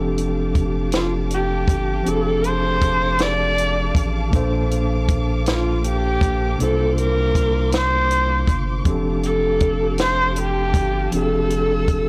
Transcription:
0.00 1.65 F1 loud
0.00 2.01 F3 medium
0.00 2.02 C4 medium
0.00 2.03 D4 medium
0.00 2.03 G4 medium
0.00 4.29 G4 medium
0.00 2.04 A4 medium
0.00 8.81 F5 medium
0.00 6.55 A5 medium
0.00 11.07 D6 medium
0.18 closed hi-hat medium
0.55 kick medium
0.55 closed hi-hat medium
0.92 snare loud
0.92 closed hi-hat medium
0.96 1.13 F4 medium
1.30 2.10 G4 loud
1.30 closed hi-hat medium
1.68 2.03 G1 medium
1.68 kick loud
1.68 closed hi-hat medium
2.03 4.27 F3 medium
2.03 4.28 C4 medium
2.03 4.29 D4 medium
2.03 closed hi-hat medium
2.08 3.92 F1 loud
2.08 4.30 G4 medium
2.08 2.14 G#4 medium
2.08 2.49 A4 loud
2.16 4.33 A4 medium
2.44 3.24 C5 loud
2.44 closed hi-hat medium
2.82 kick loud
2.82 closed hi-hat medium
3.19 4.06 D5 loud
3.19 snare loud
3.19 closed hi-hat medium
3.58 closed hi-hat medium
3.95 4.29 A1 loud
3.95 kick loud
3.95 closed hi-hat medium
4.30 6.18 A#1 loud
4.30 6.54 A#2 medium
4.30 6.54 A#3 medium
4.30 8.82 A#3 medium
4.30 6.55 D4 medium
4.30 kick loud
4.30 closed hi-hat medium
4.35 6.56 A4 medium
4.35 6.57 C5 medium
4.71 closed hi-hat medium
5.09 kick medium
5.09 closed hi-hat medium
5.46 5.82 F4 medium
5.46 snare loud
5.46 closed hi-hat medium
5.84 6.57 G4 loud
5.84 closed hi-hat medium
6.21 6.56 A#1 medium
6.21 kick loud
6.21 closed hi-hat medium
6.57 8.81 C3 medium
6.57 8.81 A#3 medium
6.57 8.82 D4 medium
6.57 8.83 C6 medium
6.57 closed hi-hat medium
6.61 8.45 C2 loud
6.61 8.83 F4 medium
6.61 6.96 A4 loud
6.61 8.84 C5 medium
6.98 7.70 A#4 loud
6.98 closed hi-hat medium
7.35 kick medium
7.35 closed hi-hat medium
7.72 snare loud
7.72 closed hi-hat medium
7.76 8.55 C5 loud
8.11 closed hi-hat medium
8.47 8.82 G1 loud
8.47 kick loud
8.47 closed hi-hat medium
8.84 10.76 F1 loud
8.84 11.07 F3 medium
8.84 11.08 C4 medium
8.84 11.09 D4 medium
8.84 12.09 G4 medium
8.84 12.09 F5 medium
8.84 12.09 A5 medium
8.84 kick loud
8.84 closed hi-hat medium
8.88 11.09 G4 medium
8.88 11.10 A4 medium
9.23 9.96 A4 loud
9.23 closed hi-hat medium
9.60 kick medium
9.60 closed hi-hat medium
9.98 10.35 C5 loud
9.98 snare loud
9.98 closed hi-hat medium
10.36 closed hi-hat medium
10.41 11.10 G4 loud
10.74 11.08 G1 loud
10.74 kick loud
10.74 closed hi-hat medium
11.11 12.09 F1 loud
11.11 12.09 F3 medium
11.11 12.09 C4 medium
11.11 12.09 D4 medium
11.11 12.09 E6 medium
11.11 closed hi-hat medium
11.16 12.09 G4 medium
11.16 11.21 G#4 medium
11.16 12.09 A4 loud
11.23 12.09 A4 medium
11.50 closed hi-hat medium
11.88 kick medium
11.88 closed hi-hat medium

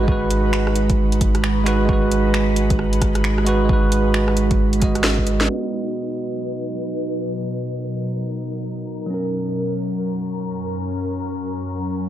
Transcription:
0.00 5.47 G#1 medium
0.00 0.04 G#3 medium
0.00 5.45 G#3 medium
0.00 1.62 G#3 medium
0.00 5.45 D#4 medium
0.00 0.08 F#4 medium
0.00 5.45 F#4 medium
0.00 0.12 B4 medium
0.00 5.45 B4 medium
0.08 1.64 F#4 medium
0.08 1.66 B4 medium
0.08 kick loud
0.30 closed hi-hat medium
0.53 finger snap loud
0.67 cross-stick medium
0.75 closed hi-hat medium
0.90 kick loud
0.90 closed hi-hat soft
1.12 closed hi-hat soft
1.21 kick loud
1.21 closed hi-hat medium
1.35 cross-stick soft
1.35 closed hi-hat soft
1.44 finger snap medium
1.64 1.84 G#3 medium
1.64 1.86 F#4 medium
1.64 1.87 B4 medium
1.64 finger snap medium
1.64 closed hi-hat medium
1.85 3.43 G#3 medium
1.85 3.44 F#4 medium
1.85 kick loud
1.93 3.47 B4 medium
2.11 closed hi-hat medium
2.34 finger snap medium
2.56 closed hi-hat medium
2.70 kick loud
2.70 closed hi-hat soft
2.79 cross-stick medium
2.93 closed hi-hat soft
3.02 kick loud
3.02 cross-stick medium
3.02 closed hi-hat medium
3.15 cross-stick medium
3.15 closed hi-hat soft
3.24 finger snap medium
3.38 cross-stick medium
3.45 3.64 G#3 medium
3.45 3.67 F#4 medium
3.45 3.68 B4 medium
3.45 closed hi-hat medium
3.65 4.78 G#3 medium
3.65 4.80 F#4 medium
3.69 4.82 B4 medium
3.69 kick loud
3.92 closed hi-hat medium
4.14 finger snap loud
4.28 cross-stick medium
4.37 closed hi-hat medium
4.51 kick loud
4.51 closed hi-hat soft
4.73 closed hi-hat soft
4.80 4.91 G#3 medium
4.80 4.92 F#4 medium
4.80 4.93 D#5 medium
4.80 kick loud
4.80 closed hi-hat medium
4.95 cross-stick medium
4.95 closed hi-hat soft
5.04 finger snap loud
5.04 snare loud
5.18 kick medium
5.27 closed hi-hat medium
5.41 snare medium
5.45 9.06 B3 medium
5.49 9.07 B2 medium
5.49 12.09 F#3 medium
5.49 9.07 D#4 medium
5.49 9.08 F#4 medium
5.49 7.28 B4 medium
5.49 9.10 D#5 medium
7.30 9.09 A#4 medium
9.06 12.09 F#2 medium
9.06 12.09 F#3 medium
9.06 12.09 C#4 medium
9.06 12.09 A#4 medium
9.14 12.09 A#4 medium

